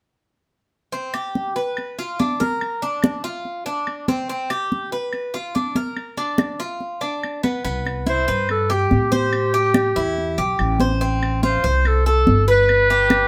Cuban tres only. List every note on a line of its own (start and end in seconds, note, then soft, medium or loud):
0.92 1.13 C4 medium
1.14 1.55 G4 medium
1.56 1.97 B4 medium
1.99 2.19 F4 medium
2.20 2.40 D4 medium
2.40 2.81 A#4 medium
2.82 3.23 D4 medium
3.24 3.65 F4 medium
3.66 4.07 D4 medium
4.08 4.28 C4 medium
4.29 4.50 C4 medium
4.50 4.91 G4 medium
4.92 5.33 B4 medium
5.34 5.54 F4 medium
5.55 5.75 D4 medium
5.76 6.17 A#4 medium
6.17 6.58 D4 medium
6.60 7.01 F4 medium
7.01 7.42 D4 medium
7.43 7.63 B3 medium
7.65 8.06 B3 medium
8.07 8.27 E4 medium
8.28 8.69 B4 medium
8.70 9.11 G4 medium
9.12 9.53 C5 medium
9.54 9.95 G4 medium
9.96 10.37 E4 medium
10.38 10.79 G4 medium
10.80 11.01 C5 medium
11.01 11.42 C4 medium
11.43 11.63 F4 medium
11.64 12.05 C5 medium
12.06 12.47 A4 medium
12.48 12.89 B4 medium
12.90 13.28 G4 medium